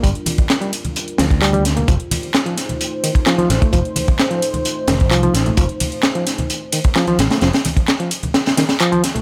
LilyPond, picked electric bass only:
\new Staff \with { instrumentName = "Picked electric bass" } { \clef bass \time 4/4 \key f \mixolydian \tempo 4 = 130 g,,8 r2 d,4. | f,,8 r2. a,,8 | f,,8 r2 f,,8 c,8 a,,8 | f,,8 r2. a,,8 |
f,,8 r2. r8 | }